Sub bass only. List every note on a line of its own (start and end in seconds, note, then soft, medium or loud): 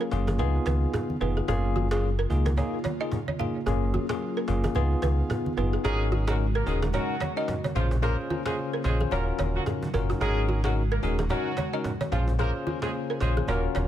0.12 0.41 F#1 medium
0.39 0.59 C#2 loud
0.66 0.86 C#2 medium
1.21 1.41 F1 loud
1.48 2.26 F#1 loud
2.30 2.62 C#2 loud
3.66 3.98 F#1 loud
4.48 4.68 F#1 loud
4.75 4.95 C#2 loud
5.03 5.23 C#2 medium
5.57 5.77 F#1 medium
5.85 6.62 G#1 loud
6.67 6.98 D#1 medium
7.75 8.15 A#1 loud
8.85 9.05 A#1 loud
9.12 9.32 D#1 loud
9.39 9.59 D#1 loud
9.94 10.14 F#1 medium
10.21 10.99 G#1 loud
11.03 11.34 D#1 loud
12.12 12.52 A#1 loud
13.21 13.41 A#1 medium
13.48 13.68 D#1 loud
13.75 13.88 D#1 medium